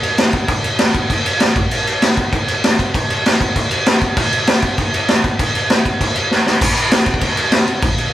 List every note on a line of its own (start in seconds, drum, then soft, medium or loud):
0.03 crash medium
0.18 snare loud
0.18 crash medium
0.33 kick medium
0.33 crash medium
0.48 kick loud
0.48 crash medium
0.64 crash medium
0.79 snare loud
0.79 crash medium
0.94 kick medium
0.94 crash medium
1.10 kick medium
1.10 crash medium
1.26 crash medium
1.40 snare loud
1.40 crash medium
1.56 kick loud
1.56 crash medium
1.71 crash medium
1.87 crash medium
2.02 snare loud
2.02 crash medium
2.17 kick medium
2.17 crash medium
2.33 kick medium
2.33 crash medium
2.48 crash medium
2.64 snare loud
2.64 crash medium
2.79 kick medium
2.79 crash medium
2.94 kick loud
2.94 crash medium
3.10 crash medium
3.26 snare loud
3.26 crash medium
3.41 kick medium
3.41 crash medium
3.56 kick medium
3.56 crash medium
3.71 crash medium
3.86 snare loud
3.86 crash medium
4.01 kick medium
4.01 crash medium
4.17 kick loud
4.17 crash medium
4.33 crash medium
4.47 snare loud
4.47 crash medium
4.62 kick medium
4.62 crash medium
4.78 kick medium
4.78 crash medium
4.94 crash medium
5.08 snare loud
5.08 crash medium
5.24 kick medium
5.24 crash medium
5.39 kick loud
5.39 crash medium
5.55 crash medium
5.70 snare loud
5.70 crash medium
5.85 kick medium
5.85 crash medium
6.01 kick medium
6.01 crash medium
6.15 crash medium
6.31 snare medium
6.46 snare medium
6.61 kick loud
6.61 crash loud
6.77 crash medium
6.91 snare loud
6.91 crash medium
7.06 kick medium
7.06 crash medium
7.14 kick medium
7.21 kick medium
7.21 crash medium
7.37 crash medium
7.52 snare loud
7.52 crash medium
7.68 crash medium
7.82 kick loud
7.82 crash medium
7.98 crash medium